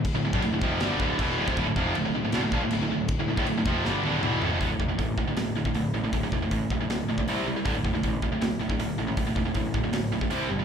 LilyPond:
<<
  \new Staff \with { instrumentName = "Distorted electric guitar" } { \clef bass \time 4/4 \key d \minor \tempo 4 = 158 r16 <d, a,>16 <d, a,>16 <d, a,>16 <d, a,>16 <d, a,>16 <f, c f>8 <g, d g>8 <d, a, d>8 <e, b, e>8 <d, a,>16 <f, c>16 | <d, a,>16 <d, a,>16 <f, c f>8 <d, a,>16 <d, a,>16 <d, a,>16 <d, a,>16 <e, b,>16 <d, a,>16 <bes, f>16 <d, a,>16 <d, a,>16 <d, a,>16 <d, a,>8 | r16 <d, a,>16 <d, a,>16 <d, a,>16 <d, a,>16 <d, a,>16 <f, c f>8 <g, d g>8 <d, a, d>8 <e, b, e>8 <d, a,>16 <f, c>16 | <d, a, d>16 <d, a,>16 <d, a,>16 <d, a,>16 <d, a,>8 <d, a,>16 <d, a,>16 <d, a,>8 <d, a,>16 <d, a,>16 <d, a,>8 <d, a,>16 <d, a,>16 |
<d, a,>16 <d, a,>16 <d, a,>16 <d, a,>16 <d, a,>8 <d, a,>16 <d, a,>16 <d, a,>8 <d, a,>16 <d, a,>16 <c g c'>8 <c g>16 <c g>16 | <d, a, d>16 <d, a,>16 <d, a,>16 <d, a,>16 <d, a,>8 <d, a,>16 <d, a,>16 <d, a,>8 <d, a,>16 <d, a,>16 <d, a,>8 <d, a,>16 <d, a,>16 | <d, a,>16 <d, a,>16 <d, a,>16 <d, a,>16 <d, a,>8 <d, a,>16 <d, a,>16 <d, a,>8 <d, a,>16 <d, a,>16 <c g c'>8 <c g>16 <c g>16 | }
  \new Staff \with { instrumentName = "Distorted electric guitar" } { \clef bass \time 4/4 \key d \minor r16 <d, a,>16 <d, a,>16 <d, a,>16 <d, a,>16 <d, a,>16 <f, c f>8 <g, d g>8 <d, a, d>8 <e, b, e>8 <d, a,>16 <f, c>16 | <d, a,>16 <d, a,>16 <f, c f>8 <d, a,>16 <d, a,>16 <d, a,>16 <d, a,>16 <e, b,>16 <d, a,>16 <bes, f>16 <d, a,>16 <d, a,>16 <d, a,>16 <d, a,>8 | r16 <d, a,>16 <d, a,>16 <d, a,>16 <d, a,>16 <d, a,>16 <f, c f>8 <g, d g>8 <d, a, d>8 <e, b, e>8 <d, a,>16 <f, c>16 | <d, a, d>16 <d, a,>16 <d, a,>16 <d, a,>16 <d, a,>8 <d, a,>16 <d, a,>16 <d, a,>8 <d, a,>16 <d, a,>16 <d, a,>8 <d, a,>16 <d, a,>16 |
<d, a,>16 <d, a,>16 <d, a,>16 <d, a,>16 <d, a,>8 <d, a,>16 <d, a,>16 <d, a,>8 <d, a,>16 <d, a,>16 <c g c'>8 <c g>16 <c g>16 | <d, a, d>16 <d, a,>16 <d, a,>16 <d, a,>16 <d, a,>8 <d, a,>16 <d, a,>16 <d, a,>8 <d, a,>16 <d, a,>16 <d, a,>8 <d, a,>16 <d, a,>16 | <d, a,>16 <d, a,>16 <d, a,>16 <d, a,>16 <d, a,>8 <d, a,>16 <d, a,>16 <d, a,>8 <d, a,>16 <d, a,>16 <c g c'>8 <c g>16 <c g>16 | }
  \new Staff \with { instrumentName = "Distorted electric guitar" } { \clef bass \time 4/4 \key d \minor r16 <d, a,>16 <d, a,>16 <d, a,>16 <d, a,>16 <d, a,>16 <f, c f>8 <g, d g>8 <d, a, d>8 <e, b, e>8 <d, a,>16 <f, c>16 | <d, a,>16 <d, a,>16 <f, c f>8 <d, a,>16 <d, a,>16 <d, a,>16 <d, a,>16 <e, b,>16 <d, a,>16 <bes, f>16 <d, a,>16 <d, a,>16 <d, a,>16 <d, a,>8 | r16 <d, a,>16 <d, a,>16 <d, a,>16 <d, a,>16 <d, a,>16 <f, c f>8 <g, d g>8 <d, a, d>8 <e, b, e>8 <d, a,>16 <f, c>16 | r1 |
r1 | r1 | r1 | }
  \new Staff \with { instrumentName = "Picked electric bass" } { \clef bass \time 4/4 \key d \minor r16 d,,16 d,,16 d,,16 d,,16 d,,16 f,,8 g,,8 d,,8 e,,8 d,,16 f,,16 | d,,16 d,,16 f,,8 d,,16 d,,16 d,,16 d,,16 e,,16 d,,16 bes,,16 d,,16 d,,16 d,,16 d,,8 | r16 d,,16 d,,16 d,,16 d,,16 d,,16 f,,8 g,,8 d,,8 e,,8 d,,16 f,,16 | d,,8 f,,8 a,,8 d,,8 d,,8 d,,8 d,,8 a,,8 |
d,,8 f,,8 a,,8 d,,8 d,,8 bes,,8 c,8 c,8 | d,,8 f,,8 a,,8 d,,8 d,,8 d,,8 d,,8 a,,8 | d,,8 f,,8 a,,8 d,,8 d,,8 d,,8 c,8 g,,8 | }
  \new DrumStaff \with { instrumentName = "Drums" } \drummode { \time 4/4 <cymc bd>8. bd16 cymc8 bd8 <cymc sn>8 bd8 <cymc bd>8. bd16 | <cymc bd>8 bd8 cymc4 <cymc sn>8 bd8 cymc4 | <cymc bd>8. bd16 cymc8 bd8 sn8 tommh8 toml8 tomfh8 | <hho bd>8 bd8 <hho bd>8 bd8 <hho sn>8. bd16 hho4 |
<hho bd>8 bd8 <hho bd>8 bd8 <hho sn>8. bd16 hho4 | <hho bd>8 bd8 <hho bd>8 bd8 <hho sn>8. bd16 hho4 | <hho bd>8 bd8 <hho bd>8 bd8 <hho sn>8. bd16 hho4 | }
>>